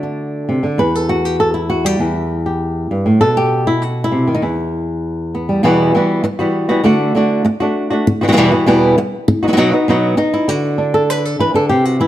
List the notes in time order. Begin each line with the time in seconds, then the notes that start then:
Already playing: D3 A3 F#4
0.03 D4
0.49 C3
0.63 D3
0.78 E2 B4
0.95 A4
1.09 F#4
1.25 G4
1.40 A4
1.54 E4
1.70 F#4
1.85 G3 G4
1.99 E2 E4
2.46 G4
2.91 G2
3.06 A2
3.21 B2 A4
3.37 G4
3.67 E4
3.82 F#4
4.04 E4
4.12 C3
4.27 D#3
4.35 D#4
4.42 E2 E4
5.35 B3
5.49 G3
5.63 E2 B2 E3 G3 B3 F#4
5.95 E3 G3 B3 F#4
6.24 muted nylon-string guitar stroke
6.39 E3 G3 B3 F#4
6.69 E3 G3 B3 F#4
6.84 D3 A3 D4 F#4
7.15 D3 A3 D4 F#4
7.45 muted nylon-string guitar stroke
7.60 A3 D4 F#4
7.90 A3 D4 F#4
8.07 muted nylon-string guitar stroke
8.21 B2 E3 G3 B3 F#4
8.28 B2 E3 G3 B3 F#4
8.32 B2 E3 G3 B3 F#4
8.37 E2 B2 E3 G3 B3 F#4
8.52 E3 G3 B3 F#4
8.66 E2 B2 E3 G3 B3 F#4
8.98 muted nylon-string guitar stroke
9.28 muted nylon-string guitar stroke
9.43 B3 D#4 F#4
9.48 F#3 B3 D#4 F#4
9.53 F#3 B3 D#4 F#4
9.57 B2 F#3 B3 D#4 F#4
9.72 B3 D#4 F#4
9.88 B2 F#3 B3 D#4 F#4
10.17 D#4, muted nylon-string guitar stroke
10.34 E4
10.48 D3 F#4
10.78 D4
10.94 A4
11.10 B4
11.25 A4
11.39 E3 B4
11.54 D3 A4
11.69 C3 G4
11.85 F#4
12.00 E3 E4